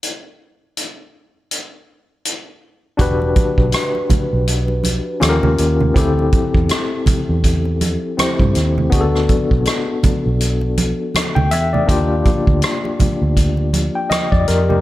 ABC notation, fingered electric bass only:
X:1
M:4/4
L:1/16
Q:"Swing 16ths" 1/4=81
K:Em
V:1 name="Fingered electric bass" clef=bass
z16 | E,,,2 z B,,, z3 B,,,4 z _E,, E,, E,,2 | D,,2 z E,, z3 E,,4 z2 G,, _E,,2 | D,,2 z B,,, z3 B,,,4 z2 D,, E,,2 |
_E,,2 z D,, z3 D,,4 z2 =F,, F,,2 |]